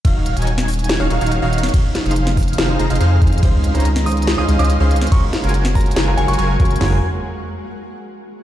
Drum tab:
RD |x-------------------------------|x-------------------------------|x-------------------------------|x-------------------------------|
HH |x---x-xxx---oxxxx---x-xxx---xxxx|x---x-xxx---oxxxx---x-xxx---xxxx|x---x-xxx---oxxx----x-xxx---xxxx|x---x-xxx---oxxxx---x-xxx---xxxx|
SD |----------o-----o-------------o-|----o-----o-----o---------------|----------o-----o-------------o-|----o-----o-----o---------------|
FT |--------------------------------|--------------------------------|--------------------------------|--------------------------------|
BD |o-------------------------------|o-----------o---------------o---|o-------------------------------|o-----------o---------------o---|

RD |--------------------------------|
HH |o-------------------------------|
SD |o-------------------------------|
FT |o-------------------------------|
BD |--------------------------------|